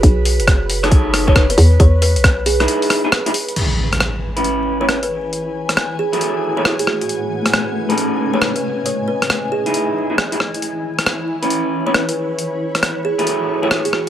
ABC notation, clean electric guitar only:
X:1
M:4/4
L:1/16
Q:"Swing 16ths" 1/4=136
K:C#m
V:1 name="Clean electric guitar"
z6 z [DGAc]4 [DGAc] [DGAc] z3 | z6 z [DEG]4 [DEG] z [DEG] z2 | z6 z [CEB]4 [CEB] C z3 | z6 z [EFGAB]4 [EFGAB] [EFGAB] z3 |
z6 z [CDGAB]4 [CDGAB] [CDGAB] z3 | z6 z [DEG]4 [DEG] z [DEG] z2 | z6 z [CEB]4 [CEB] [CEB] z3 | z6 z [EFGAB]4 [EFGAB] [EFGA] z3 |]